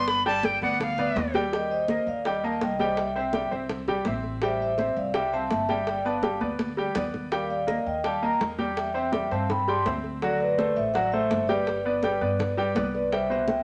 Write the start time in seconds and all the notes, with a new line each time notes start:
Already playing: G1 B3 B4 D5
0.07 B5, high bongo, high conga
0.26 G3 G4 G5 A5, high bongo, high conga
0.43 G5, high bongo, high conga
0.62 D2 B3 B4 D5 F#5, high bongo, high conga
0.80 F5, high bongo, high conga, low conga
0.98 B3 B4 D5, high conga, low conga
1.16 D#2, high bongo, low bongo, high conga
1.34 G3 G4 G5, high bongo, high conga
1.52 G3 G4 A#4 D#5 G5, high bongo, high conga
1.70 C5 D#5, high conga
1.88 A#3 A#4 D#5, high bongo, high conga
2.06 D#2 D5 F5, high conga
2.25 G3 G4 D#5 G5, high bongo, high conga
2.43 A#3 A#4 D#5 F5 A5, high conga
2.61 C2 D#5 G5, high bongo, low bongo, high conga
2.79 G3 G4 C5 D#5 G5, high conga
2.97 E5 G5, high bongo, high conga
3.15 C4 C5 E5 G5, high conga
3.33 G3 G4 G5, high bongo, high conga
3.51 C2 C4 C5 E5, high bongo, high conga
3.69 high bongo, high conga, low conga
3.88 G3 G4 G5, high bongo, high conga, low conga
4.05 A1 C4 C5 E5, high bongo, low bongo, high conga
4.24 high bongo, high conga
4.42 G3 G4 C5 E5 G5, high bongo, high conga
4.60 C5 E5, high conga
4.78 C4 C5 E5, high bongo, high conga
4.97 C2 D5 F5, high conga
5.14 G3 G4 E5 G5, high bongo, high conga
5.33 C4 C5 E5 F5 A5, high conga
5.51 G1 E5 A5, high bongo, low bongo, high conga
5.69 G3 G4 E5 G5, high conga
5.87 D5 G5, high bongo, high conga
6.05 B3 B4 D5 F5 A5, high conga
6.23 G3 G4 G5, high bongo, high conga
6.41 D2 B3 B4 D5, high bongo, high conga
6.59 high bongo, high conga
6.77 G3 G4 G5, high bongo
6.95 D#2 B3 B4 D5, high bongo, low bongo, low conga
7.14 high bongo, low conga
7.32 G3 G4 A#4 F5 G5, high bongo, high conga
7.50 D5 F5, high conga
7.67 A#3 A#4 D#5, high bongo, high conga
7.86 D#2 D#5 G5, high conga
8.04 G3 G4 F5 G5 A5, high bongo, high conga
8.22 A#3 A#4 D#5 G5 A#5, high conga
8.40 E2, high bongo, low bongo, high conga
8.59 G3 G4 G5, high conga
8.77 E5 G5, high bongo, high conga
8.94 C4 C5 E5 G5, high conga
9.12 G3 G4 G5, high bongo, high conga
9.31 G2 C4 C5 E5 F5 A5, high bongo, high conga
9.50 G5 B5, high bongo, high conga, low conga
9.68 G3 G4 G5 A5 C6, high bongo, high conga
9.86 D2 C4 C5 E5, high bongo, low bongo, high conga
10.04 high bongo, high conga
10.22 F#3 F#4 A4 D5 F#5, high bongo, high conga
10.40 B4 D5, high conga
10.58 A3 A4 C5, high bongo, high conga
10.76 A1 C5 E5, high conga
10.94 F#3 F#4 D5 F#5, high bongo, high conga
11.12 A3 A4 C5 E5, high conga
11.30 G1, high bongo, low bongo, high conga
11.47 G3 G4 B4 D5 G5, high conga
11.67 high bongo, high conga
11.85 B3 B4 D5, high conga
12.03 G3 G4 G5, high bongo, high conga
12.21 G2 B3 B4 D5, high bongo, high conga
12.39 high bongo, high conga, low conga
12.57 G3 G4 G5, high bongo, high conga
12.75 C2 B3 B4 D5, high bongo, low bongo, high conga
12.94 B4 D5, high bongo, high conga
13.12 G3 G4 C5 E5 G5, high bongo, high conga
13.30 B2 B4 C5 E5, high conga
13.48 E5 G5, high bongo, high conga